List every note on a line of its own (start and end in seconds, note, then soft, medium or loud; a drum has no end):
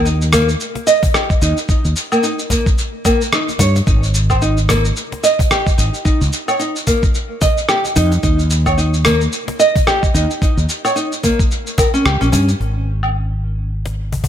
0.00 0.54 D#2 medium
0.05 0.20 D#4 medium
0.05 shaker soft
0.21 shaker soft
0.32 0.48 A#3 medium
0.32 cajon bass medium
0.32 cross-stick medium
0.32 shaker medium
0.49 shaker soft
0.60 shaker soft
0.75 cajon slap medium
0.87 1.02 D#5 loud
0.87 shaker medium
1.03 kick loud
1.03 cajon bass medium
1.03 shaker soft
1.14 1.29 G4 medium
1.14 cross-stick medium
1.14 shaker soft
1.30 kick loud
1.30 shaker soft
1.42 1.52 D#2 loud
1.42 1.57 D#4 medium
1.42 shaker medium
1.57 shaker soft
1.69 1.84 D#4 medium
1.69 kick loud
1.69 shaker soft
1.85 1.93 D#2 medium
1.85 shaker soft
1.96 shaker medium
2.12 2.23 A#3 medium
2.12 low woodblock medium
2.12 shaker soft
2.23 2.38 D#4 medium
2.23 shaker soft
2.39 shaker soft
2.50 2.66 A#3 medium
2.50 cajon bass medium
2.50 kick medium
2.50 shaker medium
2.66 kick loud
2.66 shaker soft
2.78 shaker soft
3.05 3.20 A#3 medium
3.05 kick medium
3.05 cajon bass medium
3.05 cajon slap medium
3.05 low woodblock medium
3.05 shaker medium
3.21 shaker soft
3.33 3.48 D#4 medium
3.33 cross-stick medium
3.33 shaker soft
3.49 cajon slap soft
3.49 shaker soft
3.59 3.80 G2 medium
3.59 3.74 C#5 loud
3.59 cajon bass medium
3.59 cajon slap soft
3.59 shaker medium
3.76 cajon slap medium
3.76 shaker soft
3.87 4.90 G#1 medium
3.87 4.02 D#4 medium
3.87 kick loud
3.87 cajon slap soft
3.87 shaker soft
4.03 shaker soft
4.14 shaker medium
4.30 4.41 C5 medium
4.30 kick medium
4.30 low woodblock medium
4.30 shaker soft
4.42 4.57 D#4 medium
4.42 shaker soft
4.57 shaker soft
4.69 4.84 A#3 medium
4.69 cajon bass medium
4.69 cross-stick medium
4.69 shaker medium
4.85 shaker soft
4.96 shaker soft
5.12 cajon slap medium
5.23 5.38 D#5 medium
5.23 shaker medium
5.39 kick medium
5.39 cajon bass medium
5.39 shaker soft
5.51 5.66 G4 loud
5.51 cross-stick medium
5.51 shaker soft
5.67 kick loud
5.67 shaker soft
5.78 5.89 G#1 loud
5.78 5.93 D#4 medium
5.78 shaker medium
5.94 shaker soft
6.05 6.20 D#4 medium
6.05 kick loud
6.05 shaker soft
6.21 6.29 C#2 loud
6.21 shaker soft
6.33 shaker medium
6.48 6.59 C#5 medium
6.48 low woodblock medium
6.48 shaker soft
6.59 6.75 D#4 medium
6.59 shaker soft
6.76 shaker soft
6.87 7.02 A#3 medium
6.87 cajon bass medium
6.87 kick medium
6.87 shaker medium
7.03 kick loud
7.03 shaker soft
7.14 shaker soft
7.41 7.57 D#5 medium
7.41 kick loud
7.41 cajon bass medium
7.41 cajon slap medium
7.41 shaker medium
7.57 shaker soft
7.69 7.84 G4 medium
7.69 cross-stick medium
7.69 shaker soft
7.85 cajon slap soft
7.85 shaker soft
7.96 8.16 F2 medium
7.96 8.11 D#4 medium
7.96 cajon bass medium
7.96 cajon slap soft
7.96 shaker medium
8.12 cajon slap medium
8.12 shaker soft
8.23 9.27 D#2 medium
8.23 8.38 D#4 medium
8.23 kick loud
8.23 cajon slap medium
8.23 shaker soft
8.39 shaker soft
8.50 shaker medium
8.66 8.77 C#5 medium
8.66 kick medium
8.66 low woodblock medium
8.66 shaker soft
8.78 8.93 D#4 medium
8.78 shaker soft
8.94 shaker soft
9.05 9.20 A#3 medium
9.05 cajon bass medium
9.05 cross-stick medium
9.05 shaker medium
9.21 shaker soft
9.32 shaker soft
9.48 cajon slap medium
9.59 9.75 D#5 loud
9.59 shaker medium
9.76 kick loud
9.76 cajon bass medium
9.76 shaker soft
9.87 10.02 G4 loud
9.87 cross-stick medium
9.87 shaker soft
10.03 kick medium
10.03 shaker soft
10.14 10.25 D#2 medium
10.14 10.29 D#4 medium
10.14 shaker medium
10.31 shaker soft
10.42 10.57 D#4 medium
10.42 kick loud
10.42 cajon slap medium
10.42 shaker soft
10.57 10.65 D#2 medium
10.57 shaker soft
10.69 shaker medium
10.85 10.96 C#5 medium
10.85 low woodblock medium
10.85 shaker soft
10.96 11.11 D#4 medium
10.96 shaker soft
11.12 shaker soft
11.23 11.38 A#3 medium
11.23 kick medium
11.23 cajon bass medium
11.23 shaker medium
11.39 kick loud
11.39 shaker soft
11.51 shaker soft
11.67 shaker soft
11.78 11.87 A#4 medium
11.78 cajon bass medium
11.78 kick loud
11.78 cajon slap medium
11.78 low woodblock medium
11.78 shaker medium
11.94 12.05 C#4 loud
11.94 shaker soft
12.05 12.16 C#2 loud
12.05 12.20 G4 medium
12.05 cross-stick medium
12.05 shaker soft
12.21 12.29 A#1 medium
12.21 12.31 C#4 loud
12.21 cajon slap soft
12.21 shaker soft
12.32 12.53 G2 medium
12.32 12.47 C#4 medium
12.32 cajon bass medium
12.32 cajon slap soft
12.32 shaker medium
12.49 cajon slap medium
12.49 shaker soft
12.60 14.28 G#1 medium
12.60 cajon slap soft
13.03 low woodblock medium
13.86 cajon slap medium
14.12 cajon bass medium
14.24 cajon bass medium